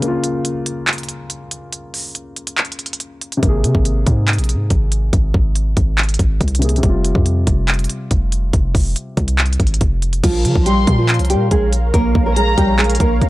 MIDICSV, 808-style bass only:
0, 0, Header, 1, 2, 480
1, 0, Start_track
1, 0, Tempo, 425532
1, 26, Time_signature, 4, 2, 24, 8
1, 14992, End_track
2, 0, Start_track
2, 0, Title_t, "808-style bass"
2, 0, Program_c, 0, 38
2, 3866, Note_on_c, 0, 32, 107
2, 4105, Note_on_c, 0, 48, 99
2, 4122, Note_off_c, 0, 32, 0
2, 4220, Note_off_c, 0, 48, 0
2, 4226, Note_on_c, 0, 32, 103
2, 4572, Note_off_c, 0, 32, 0
2, 4586, Note_on_c, 0, 44, 110
2, 4946, Note_on_c, 0, 34, 100
2, 4963, Note_off_c, 0, 44, 0
2, 5125, Note_on_c, 0, 44, 100
2, 5142, Note_off_c, 0, 34, 0
2, 5297, Note_off_c, 0, 44, 0
2, 5307, Note_on_c, 0, 32, 104
2, 5767, Note_off_c, 0, 32, 0
2, 5786, Note_on_c, 0, 32, 111
2, 6017, Note_off_c, 0, 32, 0
2, 6026, Note_on_c, 0, 32, 107
2, 6487, Note_off_c, 0, 32, 0
2, 6506, Note_on_c, 0, 32, 105
2, 6967, Note_off_c, 0, 32, 0
2, 6986, Note_on_c, 0, 32, 103
2, 7216, Note_off_c, 0, 32, 0
2, 7227, Note_on_c, 0, 36, 102
2, 7687, Note_off_c, 0, 36, 0
2, 7706, Note_on_c, 0, 29, 110
2, 8052, Note_off_c, 0, 29, 0
2, 8066, Note_on_c, 0, 41, 104
2, 8412, Note_off_c, 0, 41, 0
2, 8426, Note_on_c, 0, 29, 107
2, 8887, Note_off_c, 0, 29, 0
2, 9148, Note_on_c, 0, 29, 105
2, 9608, Note_off_c, 0, 29, 0
2, 9626, Note_on_c, 0, 29, 108
2, 9857, Note_off_c, 0, 29, 0
2, 9866, Note_on_c, 0, 29, 102
2, 10097, Note_off_c, 0, 29, 0
2, 10346, Note_on_c, 0, 36, 103
2, 10807, Note_off_c, 0, 36, 0
2, 10825, Note_on_c, 0, 32, 102
2, 11056, Note_off_c, 0, 32, 0
2, 11066, Note_on_c, 0, 29, 109
2, 11527, Note_off_c, 0, 29, 0
2, 11546, Note_on_c, 0, 34, 107
2, 11786, Note_on_c, 0, 49, 103
2, 11803, Note_off_c, 0, 34, 0
2, 11900, Note_off_c, 0, 49, 0
2, 11906, Note_on_c, 0, 34, 102
2, 12251, Note_off_c, 0, 34, 0
2, 12266, Note_on_c, 0, 46, 114
2, 12626, Note_on_c, 0, 36, 103
2, 12643, Note_off_c, 0, 46, 0
2, 12806, Note_on_c, 0, 46, 103
2, 12823, Note_off_c, 0, 36, 0
2, 12977, Note_off_c, 0, 46, 0
2, 12987, Note_on_c, 0, 34, 104
2, 13447, Note_off_c, 0, 34, 0
2, 13466, Note_on_c, 0, 34, 113
2, 13697, Note_off_c, 0, 34, 0
2, 13706, Note_on_c, 0, 34, 104
2, 14167, Note_off_c, 0, 34, 0
2, 14186, Note_on_c, 0, 34, 108
2, 14647, Note_off_c, 0, 34, 0
2, 14665, Note_on_c, 0, 34, 108
2, 14896, Note_off_c, 0, 34, 0
2, 14907, Note_on_c, 0, 37, 106
2, 14992, Note_off_c, 0, 37, 0
2, 14992, End_track
0, 0, End_of_file